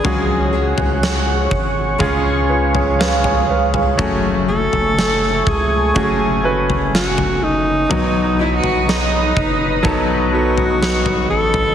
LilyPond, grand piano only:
<<
  \new Staff \with { instrumentName = "Grand piano" } { \time 4/4 \key fis \minor \tempo 4 = 62 << { r2 r8 <eis' b'>16 <gis' cis''>16 <b' eis''>16 <cis'' gis''>16 <b' eis''>16 <gis' cis''>16~ | <gis' cis''>16 r2. r8. | r1 | } \\ { <gis cis' fis' gis'>2 <gis cis' eis' gis'>8 r4. | <a cis' fis'>2 <a cis' fis' gis'>8 <a cis' fis' b'>4. | <fis b dis' fis'>2 <fis b dis' a'>8 <fis b dis' a'>4. | } >> }
  \new Staff \with { instrumentName = "Grand piano" } { \clef bass \time 4/4 \key fis \minor cis4. r8 cis4. r8 | r1 | b,4. r2 r8 | }
>>